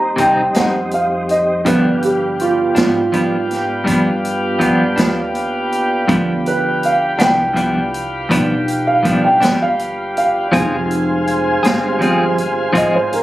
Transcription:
Already playing: upright bass D#2, tonewheel organ G3 C4 D#4, grand piano A#5
0.16 clean electric guitar C3 G3 C4 D#4, kick, closed hi-hat
0.20 grand piano G5
0.54 upright bass F2, clean electric guitar G3 C4 D#4, grand piano F#5, snare, closed hi-hat
0.91 grand piano F5, closed hi-hat
1.29 grand piano D#5, closed hi-hat
1.64 clean electric guitar G2 F3 B3 D4, upright bass G2, grand piano D3 F3 B3 B4, tonewheel organ B3 D4 F4 G4, horn section B4 F5 G5, kick, closed hi-hat
2.02 grand piano G4, closed hi-hat
2.40 grand piano F4, closed hi-hat
2.75 upright bass G#2, clean electric guitar F3 B3 D4, grand piano F4, snare, closed hi-hat
3.12 clean electric guitar G2 F3 B3 D4, closed hi-hat
3.51 snare, closed hi-hat
3.84 clean electric guitar G2 F3 B3 D4, upright bass G2, kick, closed hi-hat
4.25 closed hi-hat
4.59 clean electric guitar G2 F3 B3 D4, kick, closed hi-hat
4.96 upright bass D#2, clean electric guitar F3 B3 D4, snare, closed hi-hat
5.35 closed hi-hat
5.72 closed hi-hat
6.08 upright bass D2, clean electric guitar G2 F3 B3 D4, grand piano D3 F3 B3, tonewheel organ D4 F4 G4 B4, kick, closed hi-hat
6.46 grand piano B4, closed hi-hat
6.83 grand piano F5, closed hi-hat
7.18 upright bass C2, clean electric guitar B3 D4, grand piano F#5, snare, closed hi-hat
7.22 clean electric guitar F3, grand piano G5
7.54 clean electric guitar G2 F3 B3 D4, closed hi-hat
7.94 closed hi-hat
8.29 upright bass B1, clean electric guitar G2 F3 B3 D4, kick, closed hi-hat
8.68 closed hi-hat
8.87 grand piano F5
9.03 clean electric guitar G2 F3 B3 D4, kick, closed hi-hat
9.24 grand piano G5
9.40 upright bass G1, clean electric guitar F3 B3 D4, snare, closed hi-hat
9.62 grand piano F5
9.79 closed hi-hat
10.17 grand piano F5, closed hi-hat
10.51 upright bass F1, clean electric guitar F3 C4 F4 G#4, grand piano F3 G#3 C4, tonewheel organ G#3 C4 F4 G#4, horn section C5 G#5, kick, closed hi-hat
10.91 closed hi-hat
11.27 closed hi-hat
11.63 upright bass G1, clean electric guitar C4 F4 G#4, snare, closed hi-hat
11.99 clean electric guitar F3 C4 F4 G#4, grand piano F3 G#3 C4, closed hi-hat
12.38 closed hi-hat
12.73 upright bass G#1, clean electric guitar F3 C4 F4 G#4, kick, closed hi-hat
12.77 grand piano D#5
12.96 grand piano C5
13.13 grand piano A#4, closed hi-hat

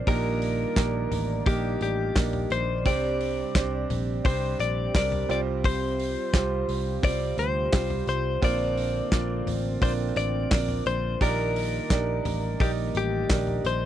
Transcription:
Already playing: analog synth pad D5
0.07 picked electric bass A#1, grand piano A#2 A#3 D4 D#4 G4 A#4, analog synth pad D#3 G3, clean electric guitar A#4, kick, hi-hat pedal, open hi-hat
0.42 hi-hat pedal, open hi-hat
0.76 picked electric bass A#1, grand piano A#3 D4 D#4 G4 A#4, kick, snare, clap, hi-hat pedal, open hi-hat
1.11 picked electric bass A1, floor tom, hi-hat pedal, open hi-hat
1.46 picked electric bass A#1, grand piano A#3 D4 D#4 G4 A#4, clean electric guitar G4, kick, hi-hat pedal, open hi-hat
1.81 picked electric bass A1, clean electric guitar G4, hi-hat pedal, open hi-hat
2.16 picked electric bass A#1, grand piano A#3 D4 D#4 G4 A#4, kick, snare, clap, hi-hat pedal, open hi-hat
2.33 floor tom
2.50 picked electric bass A#1, clean electric guitar C5, hi-hat pedal, open hi-hat
2.85 picked electric bass C2, grand piano C3 G3 C4 D4 G4 C5, analog synth pad C3 C4 G4, clean electric guitar D5, kick, hi-hat pedal, open hi-hat
3.20 hi-hat pedal, open hi-hat
3.55 picked electric bass C2, grand piano G3 C4 D4 G4 C5, kick, snare, clap, hi-hat pedal, open hi-hat
3.90 picked electric bass A#1, floor tom, hi-hat pedal, open hi-hat
4.24 picked electric bass C2, grand piano G3 C4 D4 G4 C5, clean electric guitar C5, kick, hi-hat pedal, open hi-hat
4.59 picked electric bass A#1, clean electric guitar D5, hi-hat pedal, open hi-hat
4.94 picked electric bass C2, grand piano G3 C4 D4 G4 A#4, clean electric guitar D5, kick, snare, clap, hi-hat pedal, open hi-hat
5.12 floor tom
5.29 picked electric bass C2, grand piano C3 G3 C4 F4 G4 C5, analog synth pad F4, clean electric guitar D5, hi-hat pedal, open hi-hat
5.64 clean electric guitar C5, kick, hi-hat pedal, open hi-hat
5.99 hi-hat pedal, open hi-hat
6.33 picked electric bass C2, grand piano G3 C4 F4 G4 C5, kick, snare, clap, hi-hat pedal, open hi-hat
6.68 picked electric bass C2, hi-hat pedal, open hi-hat
7.03 picked electric bass C2, grand piano G3 C4 F4 G4 C5, clean electric guitar D5, kick, hi-hat pedal, open hi-hat
7.38 picked electric bass D2, clean electric guitar C5, hi-hat pedal, open hi-hat
7.72 picked electric bass C2, grand piano G3 C4 F4 G4 C5, kick, snare, clap, hi-hat pedal, open hi-hat
7.90 floor tom
8.07 picked electric bass C2, clean electric guitar C5, hi-hat pedal, open hi-hat
8.42 picked electric bass A#1, grand piano A#2 F3 C4 D4 F4 A#4 C5, analog synth pad D3 A#3 C4, clean electric guitar D5, kick, hi-hat pedal, open hi-hat
8.77 hi-hat pedal, open hi-hat
9.12 picked electric bass A#1, grand piano C4 D4 F4 A#4 D5, kick, snare, clap, hi-hat pedal, open hi-hat
9.47 picked electric bass A1, floor tom, hi-hat pedal, open hi-hat
9.81 picked electric bass A#1, grand piano C4 D4 F4 A#4 D5, clean electric guitar C5, kick, hi-hat pedal, open hi-hat
10.16 picked electric bass A1, clean electric guitar D5, hi-hat pedal, open hi-hat
10.51 picked electric bass A#1, grand piano C4 D4 F4 A#4 D5, kick, snare, clap, hi-hat pedal, open hi-hat
10.69 floor tom
10.86 picked electric bass A#1, clean electric guitar C5, hi-hat pedal, open hi-hat
11.20 picked electric bass A#1, grand piano A#2 A#3 D4 D#4 G4 A#4 D5, analog synth pad D#3 G3 A#3, clean electric guitar A#4, kick, hi-hat pedal, open hi-hat
11.56 hi-hat pedal, open hi-hat
11.90 picked electric bass A#1, grand piano D4 D#4 G4 A#4 D5, kick, snare, clap, hi-hat pedal, open hi-hat
12.25 picked electric bass A1, floor tom, hi-hat pedal, open hi-hat
12.60 picked electric bass A#1, grand piano D#4 G4 A#4 D5 D#5, clean electric guitar G4, kick, hi-hat pedal, open hi-hat
12.95 picked electric bass A1, clean electric guitar G4, hi-hat pedal, open hi-hat
13.29 picked electric bass A#1, grand piano D4 D#4 G4 A#4 D5, kick, snare, clap, hi-hat pedal, open hi-hat
13.47 floor tom
13.64 picked electric bass A#1, clean electric guitar C5, hi-hat pedal, open hi-hat

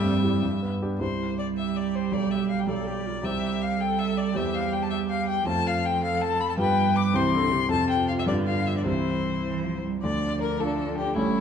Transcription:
Already playing: grand piano G2, viola G3, cello G3, violin E5
0.03 grand piano C4
0.23 grand piano E4 G4
0.43 grand piano G2
0.63 grand piano B3
0.82 grand piano D4 G4
0.99 grand piano C2 G3 E4 G4, cello G3, violin C5
1.39 violin D5
1.57 viola G4, violin E5
1.76 violin D5
1.95 violin C5
2.11 grand piano B1 G3 G4, violin D5
2.31 violin E5
2.49 violin F5
2.59 violin G5
2.67 grand piano B1 G3 G4, viola A4, violin D5
2.86 viola G4
3.06 viola F4
3.23 grand piano C2 G3 G4 C5, cello G3, viola G4, violin E5
3.62 violin F5
3.79 viola A4, violin G5
3.99 violin E5
4.18 violin D5
4.34 grand piano E2 G3 G4 C5, viola G4, violin E5
4.54 violin F5
4.72 violin G5
4.83 violin A5
4.91 violin E5
5.09 violin F5
5.28 violin G5
5.45 grand piano F2 A3 F4 C5, cello F3, viola F4, violin A5
5.67 violin F5
5.85 violin G5
6.03 viola A4, violin F5
6.21 violin A5
6.40 violin B5
6.50 violin A5
6.57 grand piano G2 B3 F4 G4, cello G3, viola B4, violin G5
6.96 violin D6
7.14 grand piano C2 C4 E4 G4, cello E3, viola C5, violin C6
7.34 cello D3, viola A4
7.51 cello C3, viola G4
7.69 grand piano F2 C4 F4 A4, cello C3, viola F4, violin A5
7.90 violin G5
8.08 violin F5
8.19 violin E5
8.26 grand piano G2 B3 D4 G4, cello D3, violin D5
8.47 violin F5
8.67 violin E5
8.77 violin D5
8.84 grand piano C2 C4 E4 G4, cello E3, viola E4, violin C5
9.44 cello E3
9.64 cello F3
9.84 cello G3
10.03 grand piano D2 D3, cello F3, viola D4, violin D5
10.42 violin A#4
10.60 grand piano A3 D4 F4, violin A4
10.98 violin G4
11.15 grand piano A1 A2 A3 C#4 G4, cello G3, viola C#4, violin E4

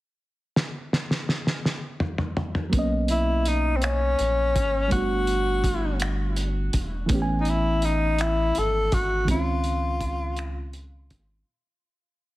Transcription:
0.56 snare
0.93 snare
1.11 snare
1.29 snare
1.47 snare
1.65 snare
2.00 mid tom
2.18 mid tom
2.37 mid tom
2.55 mid tom
2.69 reed electric piano F#3 A#3, kick, closed hi-hat
2.74 analog synth bass B1, reed electric piano B3 C#4
2.79 reed electric piano D#5
3.08 tenor saxophone E4, closed hi-hat
3.45 tenor saxophone D#4, closed hi-hat
3.77 tenor saxophone C4
3.82 tenor saxophone C#4, finger snap, closed hi-hat
4.19 analog synth bass A#1, closed hi-hat
4.56 analog synth bass G#1, kick, closed hi-hat
4.88 reed electric piano G3 A3, kick, closed hi-hat
4.92 analog synth bass G1, reed electric piano B3 D4, tenor saxophone F#4
4.97 reed electric piano F#4
5.27 closed hi-hat
5.64 kick, closed hi-hat
6.00 finger snap, closed hi-hat
6.36 closed hi-hat
6.73 analog synth bass E1, kick, closed hi-hat
7.06 reed electric piano E3 A3, kick, closed hi-hat
7.10 analog synth bass A1, reed electric piano B3 C#4
7.15 reed electric piano G4
7.22 reed electric piano G#5
7.40 tenor saxophone D#4
7.45 closed hi-hat
7.49 tenor saxophone E4
7.82 tenor saxophone D#4, closed hi-hat
8.18 tenor saxophone E4, finger snap, closed hi-hat
8.55 analog synth bass G#1, tenor saxophone A4, closed hi-hat
8.92 analog synth bass G#1, tenor saxophone F#4, kick, closed hi-hat
9.25 reed electric piano D#3 G#3, kick, closed hi-hat
9.29 analog synth bass C#2, reed electric piano C4 C#4, tenor saxophone F4
9.34 reed electric piano F4
9.64 closed hi-hat
10.01 kick, closed hi-hat
10.37 finger snap, closed hi-hat
10.73 closed hi-hat
11.10 analog synth bass G#1, kick, closed hi-hat

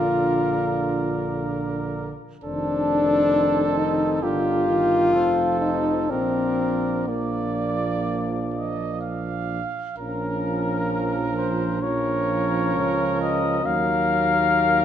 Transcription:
Already playing: bass trombone A#1, trombone D3, french horn F4, trumpet A#4, cornet D5
2.44 bass trombone F1, trombone D#3, french horn D4, trumpet A4, cornet C5
3.78 french horn D#4
4.23 bass trombone G1, trombone D3, french horn F4, trumpet G4, cornet A#4
4.68 trombone D#3
5.13 bass trombone F1, trombone F3, trumpet A4, cornet C5
5.61 french horn D#4
6.10 bass trombone A#1, trombone F3, french horn C4, trumpet A#4, cornet D5
7.08 trombone F3, french horn A#3, trumpet D5, cornet D5
8.54 trumpet D#5
9.01 trumpet F5
9.97 bass trombone A#1, trombone F3, french horn C#4, cornet A#4, trumpet A#4
11.37 cornet C5
11.82 trombone F3, french horn C#4, trumpet A#4, cornet C#5
12.74 bass trombone C#2
13.21 cornet D#5
13.64 bass trombone D#2, trombone F#3, french horn A#3, trumpet A#4, cornet F5

